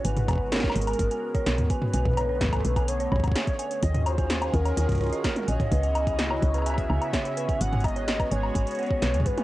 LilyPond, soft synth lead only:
\new Staff \with { instrumentName = "Soft synth lead" } { \time 4/4 \key gis \minor \tempo 4 = 127 b'4 ais'2~ ais'8 b'8~ | b'2 cis''2 | dis''8 bis'4 ais'2 dis''8~ | dis''2 e''2 |
fis''8 dis''4 cis''2 b'8 | }